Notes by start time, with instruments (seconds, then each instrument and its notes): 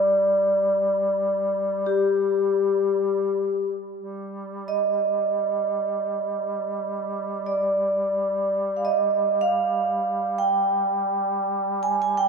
Already playing: duduk G3, vibraphone D5
1.86 vibraphone G4
3.96 duduk G3
4.68 vibraphone D#5
7.46 vibraphone D5
8.77 vibraphone F5
8.85 vibraphone D#5
9.41 vibraphone F5
10.38 vibraphone G5
11.83 vibraphone G#5
12.02 vibraphone G#5
12.17 vibraphone G5